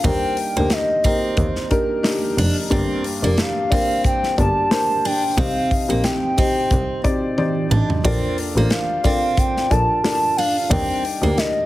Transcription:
0.04 double bass D#2, upright piano G3 A#3 D4 D#4 G4 A#4, steel-string acoustic guitar C4, soft synth lead G5, kick, hi-hat pedal, open hi-hat
0.37 hi-hat pedal, open hi-hat
0.56 double bass D2, upright piano A#3 D4 D#4 G4 C5, steel-string acoustic guitar A#3
0.70 soft synth lead D#5, snare, hi-hat pedal, open hi-hat
1.04 upright piano A#3 D#4 G4 A#4, steel-string acoustic guitar C4, kick, hi-hat pedal, open hi-hat
1.37 double bass D#2, kick, hi-hat pedal, open hi-hat
1.56 snare
1.70 upright piano A#3 D4 D#4 G4 A#4, kick, hi-hat pedal, open hi-hat
2.03 upright piano A#3 D4 D#4 G4 A#4, snare, hi-hat pedal, open hi-hat
2.38 double bass F1, steel-string acoustic guitar D4, hi-hat pedal, open hi-hat
2.70 double bass G1, upright piano G2 A#3 D4 G4 A#4 D5, steel-string acoustic guitar C4, kick, hi-hat pedal, open hi-hat
3.04 hi-hat pedal, open hi-hat
3.23 double bass F1, upright piano A#3 D4 G4 A#4 D5, steel-string acoustic guitar A#3
3.38 soft synth lead F5, snare, hi-hat pedal, open hi-hat
3.70 upright piano A#3 D4 G4 A#4 D5, steel-string acoustic guitar C4, kick, hi-hat pedal, open hi-hat
4.04 soft synth lead G5, kick, hi-hat pedal, open hi-hat
4.23 snare
4.37 double bass G1, upright piano A#3 D4 G4 A#4 D5, soft synth lead A5, kick, hi-hat pedal, open hi-hat
4.70 upright piano A#3 D4 G4 A#4 C5, soft synth lead A5, snare, hi-hat pedal, open hi-hat
5.05 steel-string acoustic guitar D4, soft synth lead G5, hi-hat pedal, open hi-hat
5.38 double bass C2, upright piano C3 C4 D#4 G4 C5 D#5, steel-string acoustic guitar C4, soft synth lead F5, kick, hi-hat pedal, open hi-hat
5.71 kick, hi-hat pedal, open hi-hat
5.88 double bass A#1, steel-string acoustic guitar A#3, upright piano C4 D#4 G4 C5 D#5
6.04 soft synth lead G5, snare, hi-hat pedal, open hi-hat
6.37 upright piano C4 D#4 G4 C5 D#5, steel-string acoustic guitar C4, kick, hi-hat pedal, open hi-hat
6.71 double bass C2, kick, hi-hat pedal, open hi-hat
7.04 upright piano C4 D#4 G4 C5 D5, kick, hi-hat pedal, open hi-hat
7.38 upright piano C4 D#4 G4 C5 D5, high tom
7.71 double bass A1, steel-string acoustic guitar D4, mid tom
7.90 floor tom
8.04 double bass A#1, upright piano A#3 D4 F4 A4 A#4 D5, steel-string acoustic guitar C4, kick, hi-hat pedal, open hi-hat
8.38 hi-hat pedal, open hi-hat
8.56 double bass A1, steel-string acoustic guitar A#3, upright piano D4 F4 A4 A#4 C5
8.70 soft synth lead F5, snare, hi-hat pedal, open hi-hat
9.04 steel-string acoustic guitar C4, upright piano D4 F4 A4 A#4 D5, kick, hi-hat pedal, open hi-hat
9.37 soft synth lead G5, kick, hi-hat pedal, open hi-hat
9.57 snare
9.70 double bass A#1, upright piano D4 F4 A4 A#4 D5, soft synth lead A5, kick, hi-hat pedal, open hi-hat
10.03 upright piano D4 F4 A4 A#4 D5, soft synth lead A5, snare, hi-hat pedal, open hi-hat
10.37 steel-string acoustic guitar D4, soft synth lead F5, hi-hat pedal, open hi-hat
10.69 double bass D#2, upright piano G3 D4 D#4 G4 A#4 D5, steel-string acoustic guitar C4, soft synth lead G5, kick
11.05 hi-hat pedal, open hi-hat
11.21 double bass D2, steel-string acoustic guitar A#3, upright piano D4 D#4 G4 A#4 D5
11.37 soft synth lead D#5, snare, hi-hat pedal, open hi-hat

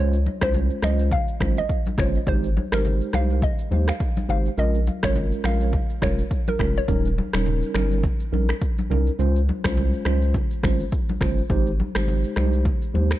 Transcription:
Already playing: sub bass C#2, tine electric piano G#3 C#4 F4 C5, synth pluck C#5
0.13 shaker
0.26 high conga
0.41 sub bass C2, tine electric piano G#3 C#4 F4 C5, synth pluck C5, finger snap, kick, cross-stick, high conga, shaker
0.54 low conga, shaker
0.70 shaker
0.82 sub bass C#2, tine electric piano G#3 C#4 F4 C5, synth pluck D#5, finger snap, cross-stick, high conga, shaker
0.99 shaker
1.11 synth pluck F5, kick, low conga, shaker
1.28 shaker
1.40 sub bass G#1, tine electric piano G#3 C#4 F4 C5, finger snap, kick, cross-stick, high conga
1.57 synth pluck D#5, shaker
1.69 kick, shaker
1.86 high conga, shaker
1.98 sub bass G1, tine electric piano G#3 C#4 F4 C5, synth pluck C#5, finger snap, kick, cross-stick, low conga
2.15 shaker
2.27 sub bass G#1, tine electric piano G#3 D#4 G4 C5, synth pluck C5, kick, low conga, shaker
2.44 shaker
2.57 high conga
2.72 sub bass G#1, tine electric piano G#3 D#4 G4 C5, synth pluck A#4, finger snap, cross-stick, high conga, shaker
2.84 low conga, shaker
3.01 shaker
3.13 sub bass C2, tine electric piano G#3 D#4 G4 C5, synth pluck F5, finger snap, cross-stick, high conga, shaker
3.30 shaker
3.42 synth pluck D#5, kick, low conga, shaker
3.59 shaker
3.71 sub bass D#2, tine electric piano G#3 D#4 G4 C5, high conga
3.88 synth pluck F5, finger snap, cross-stick, shaker
4.00 kick, shaker
4.17 high conga, shaker
4.29 sub bass G#1, tine electric piano G#3 D#4 G4 C5, synth pluck F5, low conga
4.46 shaker
4.57 sub bass A#1, tine electric piano G#3 C#4 F4 A#4, synth pluck D#5, low conga, shaker
4.75 shaker
4.87 high conga, shaker
5.03 sub bass G#1, tine electric piano G#3 C#4 F4 A#4, synth pluck C#5, finger snap, kick, cross-stick, high conga, shaker
5.15 low conga, shaker
5.32 shaker
5.44 sub bass A#1, tine electric piano G#3 C#4 F4 A#4, synth pluck F5, finger snap, cross-stick, high conga
5.61 shaker
5.73 kick, low conga, shaker
5.90 shaker
6.01 sub bass F1, tine electric piano G#3 C#4 F4 A#4, synth pluck C#5, finger snap, kick, cross-stick, high conga
6.19 shaker
6.31 kick, shaker
6.47 synth pluck A#4, high conga, shaker
6.59 sub bass F1, tine electric piano G#3 C#4 F4 A#4, finger snap, kick, cross-stick, low conga
6.76 synth pluck C#5, shaker
6.88 sub bass D#1, tine electric piano G3 C#4 D#4 A#4, kick, low conga, shaker
7.05 shaker
7.18 high conga
7.33 sub bass D#1, tine electric piano G3 C#4 D#4 A#4, finger snap, cross-stick, high conga, shaker
7.46 low conga, shaker
7.62 shaker
7.74 sub bass G1, tine electric piano G3 C#4 D#4 A#4, finger snap, cross-stick, high conga, shaker
7.91 shaker
8.03 kick, low conga, shaker
8.20 shaker
8.32 sub bass A#1, tine electric piano G3 C#4 D#4 A#4, high conga
8.49 finger snap, cross-stick, shaker
8.61 kick, shaker
8.78 high conga, shaker
8.90 sub bass C2, tine electric piano G3 C#4 D#4 A#4, low conga
9.07 shaker
9.19 sub bass C#2, tine electric piano G#3 C#4 F4 C5, low conga, shaker
9.36 shaker
9.49 high conga
9.64 sub bass C2, tine electric piano G#3 C#4 F4 C5, finger snap, kick, cross-stick, high conga, shaker
9.77 low conga, shaker
9.93 shaker
10.05 sub bass C#2, tine electric piano G#3 C#4 F4 C5, finger snap, cross-stick, high conga, shaker
10.22 shaker
10.34 kick, low conga, shaker
10.51 shaker
10.63 sub bass G#1, tine electric piano G#3 C#4 F4 C5, finger snap, kick, cross-stick, high conga
10.80 shaker
10.92 kick, shaker
11.09 high conga, shaker
11.21 sub bass G1, tine electric piano G#3 C#4 F4 C5, finger snap, kick, cross-stick, low conga
11.38 shaker
11.50 sub bass G#1, tine electric piano G#3 D#4 G4 C5, kick, low conga, shaker
11.67 shaker
11.80 high conga
11.95 sub bass G#1, tine electric piano G#3 D#4 G4 C5, finger snap, cross-stick, high conga, shaker
12.07 low conga, shaker
12.24 shaker
12.36 sub bass C2, tine electric piano G#3 D#4 G4 C5, finger snap, cross-stick, high conga, shaker
12.53 shaker
12.65 kick, low conga, shaker
12.82 shaker
12.94 sub bass D#2, tine electric piano G#3 D#4 G4 C5, high conga
13.11 finger snap, cross-stick, shaker

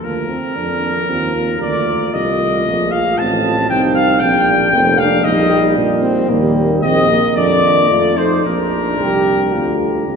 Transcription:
0.03 tuba D2, trombone A#3, french horn F4, flugelhorn A#4, trumpet A#4
0.30 trombone C4
0.56 tuba F2, french horn D4, trombone D4
0.82 trombone D4
1.09 tuba D#2, trombone C4, french horn F4
1.35 trombone A#3
1.60 tuba D2, french horn F4, flugelhorn D5, trumpet D5
2.13 tuba C2, trombone A3, flugelhorn D#5, trumpet D#5
2.67 tuba A#1
2.91 flugelhorn F5, trumpet F5
3.18 tuba A1, trombone C4, flugelhorn A5, trumpet A5
3.69 tuba C2, trombone C4, french horn D#4, flugelhorn G5, trumpet G5
3.95 flugelhorn F5, trumpet F5
4.20 tuba A#1, trombone D4, french horn D4, trumpet G5, flugelhorn G5
4.73 tuba F1, trombone A#3, french horn C4
4.97 french horn D4, flugelhorn F5, trumpet F5
5.24 tuba A#1, trombone G3, french horn D#4, trumpet D#5, flugelhorn D#5
5.51 french horn D#4
5.76 tuba A#2, french horn D4
6.02 french horn C4
6.29 tuba D#2, trombone G3, french horn A#3
6.82 tuba A#1, trombone C4, flugelhorn D#5, trumpet D#5
7.10 trombone A#3
7.36 tuba F2, french horn D4, flugelhorn D5, trumpet D5
7.63 french horn D4
7.90 tuba F2, trombone A3, french horn F4
8.18 french horn D#4, trumpet C5, flugelhorn C5
8.44 tuba A#1, trombone A#3, french horn D4, trumpet A#4, flugelhorn A#4
8.99 tuba C2, trombone G4
9.54 tuba D2, trombone F4
10.08 tuba C2

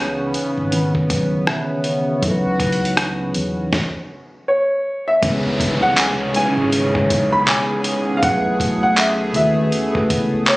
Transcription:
Already playing: fingered electric bass C#2, analog synth pad C#3 B3 C#4, tine electric piano E3 C#4 D#4 B4
0.34 muted fingered electric bass stroke, closed hi-hat
0.57 fingered electric bass G#1
0.71 tine electric piano D#3 E3 C#4 B4, closed hi-hat
0.95 kick
1.10 fingered electric bass B1, kick, closed hi-hat
1.47 tine electric piano B4 E5, cross-stick
1.84 tine electric piano G#4 C#5, closed hi-hat
2.07 tine electric piano F#4 B4
2.21 fingered electric bass C#2, tine electric piano F#3 D#4 E4 A4, analog synth pad F#4, kick, closed hi-hat
2.31 tine electric piano B4
2.60 kick, closed hi-hat
2.72 closed hi-hat
2.85 closed hi-hat
2.97 cross-stick, closed hi-hat
3.34 fingered electric bass E2, closed hi-hat
3.73 kick, snare
4.48 grand piano C#5
5.08 grand piano E5
5.21 fingered electric bass C#2, analog synth pad C#3 B3 C#4 G#4, tine electric piano G#3 B3 C#4 E4 B4, kick, closed hi-hat, downlifter
5.60 kick, closed hi-hat
5.82 grand piano F#5
5.97 grand piano G#5, clap, closed hi-hat
6.34 tine electric piano G#3 C#4 D#4 E4 B4, grand piano G#5, muted fingered electric bass stroke, closed hi-hat
6.57 fingered electric bass G#1
6.72 closed hi-hat
6.93 tine electric piano G#3 C#4 D#4 E4 C#5, kick
7.10 fingered electric bass B1, kick, closed hi-hat
7.33 grand piano B5
7.48 grand piano G#5, clap
7.84 closed hi-hat
8.17 grand piano F5
8.21 fingered electric bass B1, tine electric piano A3 C#4 E4 F#4 B4, analog synth pad A3, grand piano F#5, kick, closed hi-hat
8.60 kick, closed hi-hat
8.83 grand piano F#5
8.97 grand piano E5, clap, closed hi-hat
9.34 fingered electric bass D#2, tine electric piano A3 C#4 E4 F#4 B4, grand piano E5, closed hi-hat
9.72 closed hi-hat
9.93 tine electric piano A3 C#4 E4 F#4 B4, muted fingered electric bass stroke, kick
10.10 fingered electric bass C#2, kick, closed hi-hat
10.47 grand piano C#5, clap

